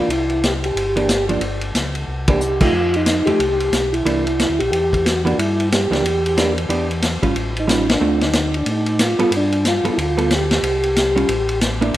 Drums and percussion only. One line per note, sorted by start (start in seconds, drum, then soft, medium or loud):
0.10 ride medium
0.30 ride soft
0.44 snare medium
0.44 hi-hat pedal medium
0.44 ride medium
0.64 ride soft
0.77 ride medium
0.97 ride soft
1.09 snare medium
1.09 hi-hat pedal medium
1.09 ride medium
1.29 ride soft
1.41 ride medium
1.61 ride soft
1.75 snare medium
1.75 hi-hat pedal soft
1.75 ride medium
1.95 ride soft
2.28 kick medium
2.28 ride medium
2.41 hi-hat pedal medium
2.61 kick medium
2.61 crash medium
2.94 ride soft
3.06 snare medium
3.06 hi-hat pedal medium
3.06 ride medium
3.27 ride soft
3.40 ride medium
3.60 ride soft
3.73 snare medium
3.73 hi-hat pedal medium
3.73 ride soft
3.94 ride soft
4.06 ride medium
4.27 ride soft
4.39 snare medium
4.39 hi-hat pedal medium
4.39 ride medium
4.60 ride soft
4.73 ride medium
4.93 kick soft
4.93 ride soft
5.06 snare medium
5.06 hi-hat pedal soft
5.06 ride medium
5.27 ride soft
5.39 ride medium
5.60 ride soft
5.72 snare medium
5.72 hi-hat pedal soft
5.72 ride medium
5.93 snare soft
5.93 ride soft
6.05 ride medium
6.26 ride soft
6.38 snare medium
6.38 hi-hat pedal soft
6.38 ride medium
6.58 ride soft
6.70 ride medium
6.91 ride soft
7.02 snare medium
7.02 hi-hat pedal medium
7.02 ride medium
7.23 kick soft
7.23 ride soft
7.36 ride soft
7.57 ride soft
7.69 snare medium
7.69 hi-hat pedal medium
7.69 ride medium
7.90 snare medium
7.90 ride medium
8.21 snare soft
8.21 ride soft
8.33 snare medium
8.33 hi-hat pedal soft
8.33 ride medium
8.54 ride soft
8.66 ride medium
8.86 ride soft
8.99 snare medium
8.99 hi-hat pedal medium
8.99 ride medium
9.19 ride soft
9.32 ride medium
9.52 ride soft
9.65 snare medium
9.65 hi-hat pedal medium
9.65 ride medium
9.85 ride soft
9.99 ride medium
10.18 ride soft
10.31 snare medium
10.31 hi-hat pedal soft
10.31 ride medium
10.51 snare medium
10.51 ride soft
10.63 ride medium
10.83 ride soft
10.96 snare medium
10.96 hi-hat pedal medium
10.96 ride medium
11.17 ride soft
11.29 ride medium
11.49 ride soft
11.61 snare medium
11.61 hi-hat pedal medium
11.61 ride medium
11.82 ride soft